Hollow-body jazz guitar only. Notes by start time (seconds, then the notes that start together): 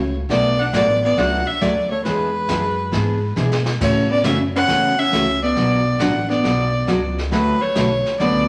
Already playing: A3
0.31 B3
0.61 D4
0.76 B3
1.06 B3
1.18 D4
1.49 C#4
1.62 B3
1.92 A3
2.06 G#3
3.82 A3
4.11 B3
4.26 C#4
4.56 C#4
4.99 C#4
5.43 B3
6.01 D4
6.30 B3
7.32 F#3
7.62 A3
8.21 B3